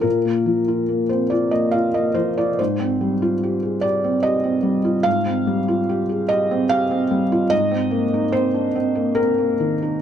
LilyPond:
\new Staff \with { instrumentName = "Felt piano" } { \time 3/4 \key f \dorian \tempo 4 = 73 << { bes'4~ bes'16 c''16 d''16 ees''16 f''16 ees''16 c''16 d''16 | c''4. d''8 ees''4 | f''4. ees''8 f''4 | ees''4 c''4 bes'4 | } \\ { <bes, f'>16 bes16 f16 f'16 bes16 c'16 f'16 bes16 f'16 bes16 f16 f'16 | aes,16 c'16 g16 f'16 g'16 aes'16 g'16 c'16 g'16 c'16 g16 f'16 | aes,16 c'16 g16 f'16 g'16 aes'16 g'16 c'16 g'16 c'16 g16 f'16 | aes,16 c'16 bes16 ees'16 c'16 d'16 c'16 bes16 c'16 bes16 ees16 ees'16 | } >> }